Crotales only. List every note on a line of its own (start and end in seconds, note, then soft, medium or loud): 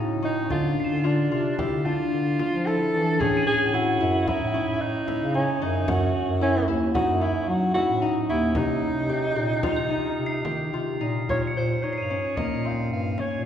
0.80 1.81 C7 soft
0.84 1.83 E7 soft
3.37 4.38 D#7 medium
3.43 4.41 F#7 soft
3.43 4.42 G#7 soft
9.72 10.73 F7 soft
9.77 10.76 A#7 soft
10.26 11.29 C7 medium
11.47 12.48 C#7 medium
11.93 12.93 C7 medium
11.98 12.96 D#7 soft
12.02 12.98 F7 soft